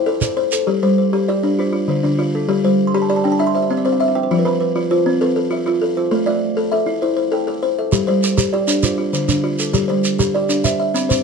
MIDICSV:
0, 0, Header, 1, 4, 480
1, 0, Start_track
1, 0, Tempo, 302267
1, 1070, Time_signature, 12, 3, 24, 8
1, 17838, End_track
2, 0, Start_track
2, 0, Title_t, "Kalimba"
2, 0, Program_c, 0, 108
2, 0, Note_on_c, 0, 79, 63
2, 126, Note_on_c, 0, 72, 63
2, 359, Note_off_c, 0, 79, 0
2, 364, Note_on_c, 0, 69, 75
2, 816, Note_off_c, 0, 69, 0
2, 816, Note_off_c, 0, 72, 0
2, 835, Note_on_c, 0, 69, 72
2, 835, Note_on_c, 0, 72, 61
2, 1313, Note_off_c, 0, 69, 0
2, 1315, Note_on_c, 0, 55, 84
2, 1541, Note_off_c, 0, 72, 0
2, 1560, Note_on_c, 0, 72, 64
2, 1793, Note_off_c, 0, 55, 0
2, 2047, Note_on_c, 0, 67, 77
2, 2048, Note_on_c, 0, 74, 65
2, 2276, Note_off_c, 0, 72, 0
2, 2520, Note_off_c, 0, 67, 0
2, 2531, Note_on_c, 0, 62, 73
2, 2532, Note_on_c, 0, 72, 62
2, 2761, Note_off_c, 0, 74, 0
2, 2762, Note_off_c, 0, 62, 0
2, 2987, Note_off_c, 0, 72, 0
2, 3006, Note_on_c, 0, 72, 64
2, 3244, Note_on_c, 0, 50, 77
2, 3718, Note_off_c, 0, 50, 0
2, 3719, Note_off_c, 0, 72, 0
2, 3730, Note_on_c, 0, 69, 63
2, 3733, Note_on_c, 0, 62, 72
2, 4202, Note_on_c, 0, 55, 80
2, 4203, Note_off_c, 0, 62, 0
2, 4441, Note_off_c, 0, 69, 0
2, 4563, Note_on_c, 0, 84, 65
2, 4677, Note_off_c, 0, 55, 0
2, 4678, Note_on_c, 0, 83, 74
2, 4781, Note_off_c, 0, 84, 0
2, 4791, Note_on_c, 0, 81, 68
2, 4899, Note_off_c, 0, 83, 0
2, 4917, Note_on_c, 0, 67, 77
2, 4919, Note_on_c, 0, 83, 67
2, 5004, Note_off_c, 0, 81, 0
2, 5023, Note_on_c, 0, 81, 70
2, 5139, Note_off_c, 0, 83, 0
2, 5147, Note_on_c, 0, 79, 72
2, 5250, Note_off_c, 0, 81, 0
2, 5271, Note_on_c, 0, 81, 75
2, 5373, Note_off_c, 0, 79, 0
2, 5385, Note_on_c, 0, 83, 62
2, 5390, Note_on_c, 0, 62, 76
2, 5394, Note_off_c, 0, 67, 0
2, 5494, Note_off_c, 0, 81, 0
2, 5506, Note_on_c, 0, 84, 69
2, 5612, Note_off_c, 0, 83, 0
2, 5631, Note_off_c, 0, 62, 0
2, 5631, Note_on_c, 0, 72, 67
2, 5732, Note_off_c, 0, 84, 0
2, 5755, Note_on_c, 0, 74, 67
2, 5854, Note_off_c, 0, 72, 0
2, 5873, Note_on_c, 0, 76, 63
2, 5977, Note_off_c, 0, 74, 0
2, 5994, Note_on_c, 0, 74, 70
2, 6096, Note_off_c, 0, 76, 0
2, 6110, Note_on_c, 0, 60, 72
2, 6112, Note_on_c, 0, 76, 67
2, 6216, Note_off_c, 0, 74, 0
2, 6233, Note_on_c, 0, 77, 64
2, 6330, Note_off_c, 0, 76, 0
2, 6349, Note_on_c, 0, 76, 67
2, 6455, Note_off_c, 0, 77, 0
2, 6479, Note_on_c, 0, 77, 67
2, 6573, Note_off_c, 0, 76, 0
2, 6591, Note_off_c, 0, 60, 0
2, 6595, Note_on_c, 0, 72, 71
2, 6596, Note_on_c, 0, 79, 69
2, 6698, Note_off_c, 0, 77, 0
2, 6704, Note_off_c, 0, 72, 0
2, 6723, Note_on_c, 0, 72, 69
2, 6816, Note_off_c, 0, 79, 0
2, 6846, Note_on_c, 0, 74, 65
2, 6940, Note_off_c, 0, 72, 0
2, 6968, Note_on_c, 0, 71, 65
2, 7062, Note_off_c, 0, 74, 0
2, 7084, Note_on_c, 0, 72, 69
2, 7085, Note_on_c, 0, 53, 82
2, 7183, Note_off_c, 0, 71, 0
2, 7312, Note_on_c, 0, 71, 66
2, 7557, Note_off_c, 0, 53, 0
2, 7778, Note_off_c, 0, 72, 0
2, 7796, Note_on_c, 0, 65, 84
2, 7797, Note_on_c, 0, 72, 66
2, 8030, Note_off_c, 0, 71, 0
2, 8272, Note_off_c, 0, 65, 0
2, 8286, Note_on_c, 0, 71, 62
2, 8287, Note_on_c, 0, 60, 70
2, 8512, Note_off_c, 0, 72, 0
2, 8757, Note_off_c, 0, 60, 0
2, 8770, Note_on_c, 0, 76, 60
2, 8996, Note_off_c, 0, 71, 0
2, 9013, Note_on_c, 0, 65, 76
2, 9464, Note_off_c, 0, 65, 0
2, 9478, Note_off_c, 0, 76, 0
2, 9482, Note_on_c, 0, 72, 64
2, 9483, Note_on_c, 0, 65, 77
2, 9954, Note_off_c, 0, 65, 0
2, 9959, Note_on_c, 0, 57, 79
2, 9959, Note_on_c, 0, 76, 70
2, 10193, Note_off_c, 0, 72, 0
2, 10432, Note_off_c, 0, 57, 0
2, 10660, Note_off_c, 0, 76, 0
2, 10679, Note_on_c, 0, 76, 67
2, 10682, Note_on_c, 0, 69, 80
2, 11153, Note_off_c, 0, 69, 0
2, 11161, Note_on_c, 0, 64, 69
2, 11162, Note_on_c, 0, 74, 59
2, 11391, Note_off_c, 0, 76, 0
2, 11632, Note_off_c, 0, 64, 0
2, 11645, Note_on_c, 0, 79, 59
2, 11872, Note_off_c, 0, 74, 0
2, 11881, Note_on_c, 0, 69, 72
2, 12346, Note_off_c, 0, 69, 0
2, 12353, Note_off_c, 0, 79, 0
2, 12363, Note_on_c, 0, 76, 61
2, 12365, Note_on_c, 0, 69, 70
2, 12833, Note_off_c, 0, 69, 0
2, 12834, Note_on_c, 0, 74, 67
2, 12838, Note_on_c, 0, 55, 80
2, 13072, Note_off_c, 0, 76, 0
2, 13090, Note_on_c, 0, 72, 64
2, 13309, Note_off_c, 0, 55, 0
2, 13541, Note_off_c, 0, 74, 0
2, 13556, Note_on_c, 0, 67, 83
2, 13560, Note_on_c, 0, 74, 66
2, 13795, Note_off_c, 0, 72, 0
2, 14029, Note_off_c, 0, 67, 0
2, 14037, Note_on_c, 0, 62, 74
2, 14037, Note_on_c, 0, 72, 61
2, 14269, Note_off_c, 0, 62, 0
2, 14271, Note_off_c, 0, 74, 0
2, 14485, Note_off_c, 0, 72, 0
2, 14504, Note_on_c, 0, 72, 63
2, 14751, Note_on_c, 0, 50, 77
2, 15223, Note_off_c, 0, 72, 0
2, 15226, Note_off_c, 0, 50, 0
2, 15238, Note_on_c, 0, 62, 69
2, 15238, Note_on_c, 0, 69, 58
2, 15710, Note_off_c, 0, 62, 0
2, 15716, Note_on_c, 0, 74, 69
2, 15722, Note_on_c, 0, 55, 82
2, 15950, Note_off_c, 0, 69, 0
2, 16192, Note_off_c, 0, 55, 0
2, 16426, Note_off_c, 0, 74, 0
2, 16443, Note_on_c, 0, 67, 79
2, 16445, Note_on_c, 0, 74, 66
2, 16914, Note_off_c, 0, 67, 0
2, 16916, Note_on_c, 0, 72, 58
2, 16922, Note_on_c, 0, 62, 74
2, 17153, Note_off_c, 0, 62, 0
2, 17155, Note_off_c, 0, 74, 0
2, 17391, Note_off_c, 0, 72, 0
2, 17396, Note_on_c, 0, 83, 58
2, 17637, Note_on_c, 0, 60, 77
2, 17838, Note_off_c, 0, 60, 0
2, 17838, Note_off_c, 0, 83, 0
2, 17838, End_track
3, 0, Start_track
3, 0, Title_t, "Kalimba"
3, 0, Program_c, 1, 108
3, 0, Note_on_c, 1, 72, 65
3, 100, Note_on_c, 1, 69, 78
3, 321, Note_off_c, 1, 69, 0
3, 340, Note_on_c, 1, 69, 67
3, 566, Note_off_c, 1, 72, 0
3, 585, Note_on_c, 1, 72, 80
3, 1063, Note_on_c, 1, 67, 65
3, 1066, Note_off_c, 1, 69, 0
3, 1068, Note_off_c, 1, 72, 0
3, 1069, Note_on_c, 1, 55, 75
3, 1319, Note_on_c, 1, 72, 66
3, 1550, Note_off_c, 1, 55, 0
3, 1776, Note_off_c, 1, 67, 0
3, 1795, Note_on_c, 1, 67, 74
3, 2035, Note_off_c, 1, 72, 0
3, 2038, Note_on_c, 1, 74, 63
3, 2274, Note_off_c, 1, 67, 0
3, 2278, Note_on_c, 1, 62, 77
3, 2515, Note_off_c, 1, 62, 0
3, 2518, Note_on_c, 1, 65, 65
3, 2721, Note_off_c, 1, 65, 0
3, 2740, Note_on_c, 1, 65, 66
3, 2755, Note_off_c, 1, 74, 0
3, 2984, Note_on_c, 1, 50, 78
3, 3229, Note_on_c, 1, 62, 71
3, 3454, Note_off_c, 1, 65, 0
3, 3468, Note_off_c, 1, 50, 0
3, 3473, Note_on_c, 1, 65, 81
3, 3947, Note_on_c, 1, 55, 78
3, 3947, Note_on_c, 1, 67, 67
3, 3951, Note_off_c, 1, 62, 0
3, 3953, Note_off_c, 1, 65, 0
3, 4200, Note_on_c, 1, 72, 68
3, 4430, Note_off_c, 1, 55, 0
3, 4656, Note_off_c, 1, 67, 0
3, 4675, Note_on_c, 1, 67, 81
3, 4915, Note_on_c, 1, 74, 65
3, 4916, Note_off_c, 1, 72, 0
3, 5154, Note_off_c, 1, 67, 0
3, 5161, Note_on_c, 1, 62, 76
3, 5396, Note_on_c, 1, 76, 68
3, 5397, Note_off_c, 1, 62, 0
3, 5623, Note_off_c, 1, 76, 0
3, 5634, Note_off_c, 1, 74, 0
3, 5642, Note_on_c, 1, 76, 65
3, 5884, Note_on_c, 1, 60, 76
3, 6122, Note_on_c, 1, 72, 73
3, 6340, Note_off_c, 1, 76, 0
3, 6358, Note_off_c, 1, 60, 0
3, 6359, Note_on_c, 1, 76, 74
3, 6835, Note_off_c, 1, 76, 0
3, 6836, Note_off_c, 1, 72, 0
3, 6843, Note_on_c, 1, 53, 80
3, 6848, Note_on_c, 1, 65, 65
3, 7069, Note_on_c, 1, 71, 65
3, 7316, Note_off_c, 1, 53, 0
3, 7534, Note_off_c, 1, 65, 0
3, 7553, Note_on_c, 1, 65, 79
3, 7789, Note_off_c, 1, 71, 0
3, 7794, Note_on_c, 1, 72, 65
3, 8031, Note_off_c, 1, 65, 0
3, 8036, Note_on_c, 1, 60, 78
3, 8273, Note_on_c, 1, 69, 69
3, 8494, Note_off_c, 1, 69, 0
3, 8511, Note_off_c, 1, 72, 0
3, 8512, Note_off_c, 1, 60, 0
3, 8513, Note_on_c, 1, 69, 67
3, 8744, Note_on_c, 1, 65, 75
3, 8972, Note_off_c, 1, 65, 0
3, 8991, Note_on_c, 1, 65, 69
3, 9216, Note_off_c, 1, 69, 0
3, 9235, Note_on_c, 1, 69, 75
3, 9689, Note_off_c, 1, 69, 0
3, 9708, Note_off_c, 1, 65, 0
3, 9708, Note_on_c, 1, 69, 66
3, 9710, Note_on_c, 1, 57, 81
3, 9944, Note_on_c, 1, 74, 70
3, 10187, Note_off_c, 1, 57, 0
3, 10411, Note_off_c, 1, 69, 0
3, 10430, Note_on_c, 1, 69, 79
3, 10664, Note_off_c, 1, 74, 0
3, 10664, Note_on_c, 1, 76, 66
3, 10899, Note_on_c, 1, 64, 75
3, 10907, Note_off_c, 1, 69, 0
3, 11149, Note_on_c, 1, 72, 67
3, 11361, Note_off_c, 1, 72, 0
3, 11380, Note_on_c, 1, 72, 67
3, 11381, Note_off_c, 1, 64, 0
3, 11383, Note_off_c, 1, 76, 0
3, 11620, Note_on_c, 1, 69, 74
3, 11846, Note_off_c, 1, 69, 0
3, 11865, Note_on_c, 1, 69, 63
3, 12091, Note_off_c, 1, 72, 0
3, 12110, Note_on_c, 1, 72, 75
3, 12580, Note_on_c, 1, 67, 66
3, 12582, Note_on_c, 1, 55, 79
3, 12583, Note_off_c, 1, 69, 0
3, 12586, Note_off_c, 1, 72, 0
3, 12817, Note_on_c, 1, 72, 67
3, 13061, Note_off_c, 1, 55, 0
3, 13280, Note_off_c, 1, 67, 0
3, 13299, Note_on_c, 1, 67, 78
3, 13539, Note_off_c, 1, 72, 0
3, 13540, Note_on_c, 1, 74, 65
3, 13778, Note_on_c, 1, 62, 78
3, 13780, Note_off_c, 1, 67, 0
3, 14020, Note_off_c, 1, 62, 0
3, 14022, Note_on_c, 1, 65, 66
3, 14239, Note_off_c, 1, 65, 0
3, 14258, Note_on_c, 1, 65, 60
3, 14261, Note_off_c, 1, 74, 0
3, 14498, Note_on_c, 1, 50, 71
3, 14740, Note_on_c, 1, 62, 69
3, 14966, Note_off_c, 1, 65, 0
3, 14980, Note_off_c, 1, 50, 0
3, 14985, Note_on_c, 1, 65, 76
3, 15456, Note_on_c, 1, 55, 78
3, 15461, Note_off_c, 1, 62, 0
3, 15461, Note_on_c, 1, 67, 67
3, 15464, Note_off_c, 1, 65, 0
3, 15689, Note_on_c, 1, 72, 67
3, 15939, Note_off_c, 1, 55, 0
3, 16165, Note_off_c, 1, 67, 0
3, 16184, Note_on_c, 1, 67, 76
3, 16416, Note_off_c, 1, 72, 0
3, 16428, Note_on_c, 1, 74, 68
3, 16660, Note_on_c, 1, 62, 74
3, 16664, Note_off_c, 1, 67, 0
3, 16898, Note_on_c, 1, 76, 65
3, 16902, Note_off_c, 1, 62, 0
3, 17124, Note_off_c, 1, 76, 0
3, 17143, Note_on_c, 1, 76, 64
3, 17146, Note_off_c, 1, 74, 0
3, 17378, Note_on_c, 1, 60, 76
3, 17614, Note_on_c, 1, 72, 69
3, 17835, Note_off_c, 1, 76, 0
3, 17838, Note_off_c, 1, 60, 0
3, 17838, Note_off_c, 1, 72, 0
3, 17838, End_track
4, 0, Start_track
4, 0, Title_t, "Shekere"
4, 338, Note_on_c, 9, 82, 64
4, 497, Note_off_c, 9, 82, 0
4, 823, Note_on_c, 9, 82, 52
4, 982, Note_off_c, 9, 82, 0
4, 12584, Note_on_c, 9, 82, 78
4, 12743, Note_off_c, 9, 82, 0
4, 13074, Note_on_c, 9, 82, 63
4, 13233, Note_off_c, 9, 82, 0
4, 13306, Note_on_c, 9, 82, 79
4, 13465, Note_off_c, 9, 82, 0
4, 13784, Note_on_c, 9, 82, 58
4, 13943, Note_off_c, 9, 82, 0
4, 14024, Note_on_c, 9, 82, 76
4, 14183, Note_off_c, 9, 82, 0
4, 14511, Note_on_c, 9, 82, 56
4, 14670, Note_off_c, 9, 82, 0
4, 14747, Note_on_c, 9, 82, 71
4, 14906, Note_off_c, 9, 82, 0
4, 15228, Note_on_c, 9, 82, 57
4, 15387, Note_off_c, 9, 82, 0
4, 15467, Note_on_c, 9, 82, 65
4, 15626, Note_off_c, 9, 82, 0
4, 15948, Note_on_c, 9, 82, 54
4, 16107, Note_off_c, 9, 82, 0
4, 16192, Note_on_c, 9, 82, 69
4, 16351, Note_off_c, 9, 82, 0
4, 16670, Note_on_c, 9, 82, 54
4, 16829, Note_off_c, 9, 82, 0
4, 16906, Note_on_c, 9, 82, 73
4, 17065, Note_off_c, 9, 82, 0
4, 17393, Note_on_c, 9, 82, 54
4, 17552, Note_off_c, 9, 82, 0
4, 17639, Note_on_c, 9, 82, 66
4, 17798, Note_off_c, 9, 82, 0
4, 17838, End_track
0, 0, End_of_file